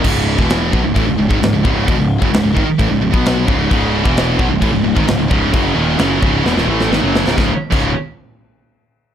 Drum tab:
CC |x---x---x---x---|x---x---x---x---|x---x---x---x---|x---x-----------|
SD |----o-------o---|----o-------o---|----o-------o---|----o---oo-oo-oo|
BD |o--o--o-o--o--o-|o--o--o-o--o--o-|o--o--o-o--o--o-|o-----o---------|

CC |---x------------|
SD |o---------------|
BD |o--o------------|